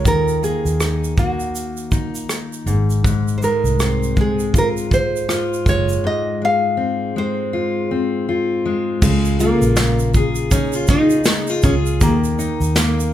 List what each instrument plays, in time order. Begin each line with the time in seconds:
Already playing: steel-string acoustic guitar G#3 F4 A#4
0.04 fingered electric bass D#2, steel-string acoustic guitar D#3, nylon-string guitar A#4, kick, shaker
0.28 shaker
0.43 steel-string acoustic guitar A#3, nylon-string guitar G#4, shaker
0.65 fingered electric bass D#2, shaker
0.80 steel-string acoustic guitar D#4, cross-stick, shaker
1.04 shaker
1.18 steel-string acoustic guitar A#3, nylon-string guitar F#4, kick, shaker
1.40 shaker
1.55 shaker
1.77 shaker
1.91 steel-string acoustic guitar D#4, kick, cross-stick, shaker
2.13 nylon-string guitar F4, shaker
2.29 cross-stick, shaker
2.53 shaker
2.66 fingered electric bass G#1, steel-string acoustic guitar G#2, shaker
2.90 shaker
3.04 steel-string acoustic guitar G#2, kick, shaker
3.28 shaker
3.38 nylon-string guitar C5
3.42 steel-string acoustic guitar G#3, nylon-string guitar A#4, shaker
3.64 fingered electric bass C2, shaker
3.79 steel-string acoustic guitar C4, cross-stick, shaker
4.03 shaker
4.17 steel-string acoustic guitar G#3, nylon-string guitar G#4, kick, shaker
4.39 shaker
4.54 steel-string acoustic guitar F4, kick, shaker
4.58 nylon-string guitar A#4
4.77 shaker
4.91 nylon-string guitar C5, kick, cross-stick, shaker
5.16 shaker
5.29 steel-string acoustic guitar F4, cross-stick, shaker
5.54 shaker
5.66 fingered electric bass F#1, steel-string acoustic guitar G#3, kick, shaker
5.68 nylon-string guitar C#5, shaker
5.89 shaker
5.92 shaker
6.04 steel-string acoustic guitar G#2, nylon-string guitar D#5
6.42 steel-string acoustic guitar G#3, nylon-string guitar F5
6.77 steel-string acoustic guitar C4
7.16 steel-string acoustic guitar G#3, nylon-string guitar C5
7.53 steel-string acoustic guitar F4
7.91 steel-string acoustic guitar C4
8.29 steel-string acoustic guitar F4
8.66 steel-string acoustic guitar G#3
9.02 fingered electric bass C#2, steel-string acoustic guitar C#3, nylon-string guitar G#3, kick, crash, shaker
9.25 shaker
9.40 nylon-string guitar A#3, steel-string acoustic guitar F4, shaker
9.62 fingered electric bass A#1, shaker
9.76 steel-string acoustic guitar A#3, snare, shaker
9.99 shaker
10.14 steel-string acoustic guitar G#4, kick, shaker
10.35 shaker
10.51 nylon-string guitar C#4, steel-string acoustic guitar D#4, kick, shaker
10.73 steel-string acoustic guitar F4, shaker
10.87 nylon-string guitar D#4, steel-string acoustic guitar G#4, kick, snare, shaker
11.10 shaker
11.24 steel-string acoustic guitar D#4, snare, shaker
11.47 steel-string acoustic guitar F4, shaker
11.62 fingered electric bass C#2, nylon-string guitar C#4, steel-string acoustic guitar G#4, kick, shaker
11.86 shaker
12.01 fingered electric bass D#2, steel-string acoustic guitar D#3, nylon-string guitar A#3, kick, shaker
12.24 shaker
12.39 steel-string acoustic guitar D#4, shaker
12.60 fingered electric bass D#2, shaker
12.63 shaker
12.76 steel-string acoustic guitar A#3, nylon-string guitar A#3, snare, shaker
13.00 shaker